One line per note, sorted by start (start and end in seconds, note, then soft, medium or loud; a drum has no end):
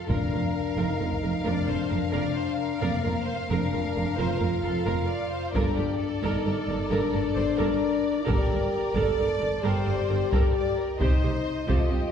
0.08 0.18 F1 medium
0.08 0.17 F2 medium
0.08 0.74 F2 medium
0.08 0.75 D4 medium
0.08 1.45 A#4 medium
0.08 0.30 A#4 medium
0.08 5.51 F5 medium
0.08 taiko medium
0.32 0.40 F1 soft
0.32 0.40 F2 soft
0.32 0.40 A#4 soft
0.77 0.85 F1 medium
0.77 0.85 F2 medium
0.77 1.45 D#4 medium
0.77 0.99 A#4 medium
1.00 1.08 F1 soft
1.00 1.08 F2 soft
1.00 1.08 A#4 soft
1.11 taiko soft
1.23 1.31 F1 soft
1.23 1.31 F2 soft
1.23 1.31 A#4 soft
1.44 1.54 F1 medium
1.44 1.54 F2 medium
1.44 2.82 D4 medium
1.44 1.66 A#4 medium
1.44 1.68 D5 medium
1.67 1.76 F1 soft
1.67 1.77 F2 soft
1.67 1.76 A#4 soft
1.67 1.91 C5 medium
1.90 1.99 F1 soft
1.90 1.99 F2 soft
1.90 2.13 A#4 medium
1.90 1.98 A#4 soft
2.12 2.22 F1 medium
2.12 2.22 F2 medium
2.12 2.34 A#4 medium
2.12 2.36 D5 medium
2.35 2.58 C5 medium
2.58 2.81 A#4 medium
2.81 2.90 F1 medium
2.81 2.90 F2 medium
2.81 3.34 A#3 medium
2.81 3.03 A#4 medium
2.81 3.04 D5 medium
3.03 3.13 F1 soft
3.03 3.13 F2 soft
3.03 3.26 A#4 medium
3.03 3.12 A#4 soft
3.26 3.49 C5 medium
3.49 3.58 F1 medium
3.49 3.58 F2 medium
3.49 4.18 D4 medium
3.49 4.17 A#4 medium
3.49 3.71 A#4 medium
3.73 3.81 F1 soft
3.73 3.82 F2 soft
3.73 3.81 A#4 soft
3.96 4.04 F1 soft
3.96 4.04 F2 soft
3.96 4.04 A#4 soft
4.17 4.28 F1 medium
4.17 4.28 F2 medium
4.17 5.54 F4 medium
4.17 4.39 A#4 medium
4.17 4.40 C5 medium
4.39 4.49 F1 soft
4.39 4.50 F2 soft
4.39 4.63 A#4 medium
4.39 4.49 A#4 soft
4.63 4.72 F1 soft
4.63 4.72 F2 soft
4.63 4.85 A4 medium
4.63 4.72 A#4 medium
4.85 4.95 F1 medium
4.85 4.95 F2 medium
4.85 5.09 A#4 medium
4.85 5.08 A#4 medium
5.08 5.31 D5 medium
5.31 5.54 C5 medium
5.53 5.62 G1 medium
5.53 5.63 G2 medium
5.53 6.21 D4 medium
5.53 5.76 A4 medium
5.53 5.76 A#4 medium
5.53 10.96 D5 medium
5.53 taiko medium
5.77 5.85 G1 soft
5.77 5.86 G2 soft
5.77 6.00 G4 medium
5.77 5.86 A4 soft
5.77 5.86 A#4 soft
5.99 6.89 A4 medium
6.22 6.31 G1 medium
6.22 6.31 G2 medium
6.22 6.91 D#4 medium
6.22 6.44 A4 medium
6.22 6.44 A#4 medium
6.45 6.53 G1 soft
6.45 6.54 G2 soft
6.45 6.53 A4 soft
6.45 6.53 A#4 soft
6.68 6.76 G1 soft
6.68 6.76 G2 soft
6.68 6.77 A4 soft
6.68 6.77 A#4 soft
6.90 6.99 G1 medium
6.90 6.99 G2 medium
6.90 8.27 D4 medium
6.90 7.12 A4 medium
6.90 7.13 A#4 medium
6.90 7.12 A#4 medium
7.13 7.22 G1 soft
7.13 7.22 G2 medium
7.13 7.21 A4 soft
7.13 7.37 A4 medium
7.13 7.21 A#4 soft
7.36 7.45 G1 soft
7.36 7.45 G2 soft
7.36 7.44 A4 soft
7.36 7.44 A#4 soft
7.36 7.59 C5 medium
7.58 7.67 G1 medium
7.58 7.67 G2 medium
7.58 7.80 A4 medium
7.58 7.80 A#4 medium
7.58 8.26 A#4 medium
8.26 8.36 G1 medium
8.26 8.35 G2 medium
8.26 8.95 G4 medium
8.26 8.48 A4 medium
8.26 8.48 A#4 medium
8.26 8.94 A#4 medium
8.26 taiko medium
8.49 8.58 G1 soft
8.49 8.58 G2 soft
8.49 8.57 A4 soft
8.49 8.57 A#4 soft
8.94 9.04 G1 medium
8.94 9.04 G2 medium
8.94 9.63 A4 medium
8.94 9.17 A4 medium
8.94 9.17 A#4 medium
8.94 9.63 D5 medium
8.94 taiko medium
9.18 9.27 G1 soft
9.18 9.26 G2 soft
9.18 9.27 A4 soft
9.18 9.27 A#4 soft
9.41 9.50 G1 soft
9.41 9.49 G2 soft
9.41 9.49 A4 soft
9.41 9.49 A#4 soft
9.63 9.73 G1 medium
9.63 9.71 G2 medium
9.63 10.83 G4 medium
9.63 9.85 A4 medium
9.63 9.85 A#4 medium
9.63 10.30 C5 medium
9.86 9.95 G1 soft
9.86 9.94 G2 soft
9.86 9.95 A4 soft
9.86 9.94 A#4 soft
10.09 10.18 G1 soft
10.09 10.17 G2 soft
10.09 10.17 A4 soft
10.09 10.17 A#4 soft
10.31 10.40 G1 medium
10.31 10.40 G2 medium
10.31 10.53 A4 medium
10.31 10.54 A#4 medium
10.31 10.53 A#4 medium
10.31 taiko medium
10.54 10.77 D5 medium
10.76 11.00 A#4 medium
10.99 11.08 C2 medium
10.99 11.08 C3 medium
10.99 11.67 D#4 medium
10.99 11.21 G4 medium
10.99 11.68 C5 medium
10.99 11.21 C5 medium
10.99 12.12 D#5 medium
10.99 taiko medium
11.22 11.31 C2 soft
11.22 11.30 C3 soft
11.22 11.31 G4 soft
11.22 11.31 C5 soft
11.67 11.76 C2 medium
11.67 11.76 C3 medium
11.67 12.12 F4 medium
11.67 11.89 G4 medium
11.67 11.91 A4 medium
11.67 11.89 C5 medium
11.67 taiko medium
11.90 12.00 C2 soft
11.90 11.99 C3 soft
11.90 12.12 G4 soft
11.90 11.99 G4 soft
11.90 11.99 C5 soft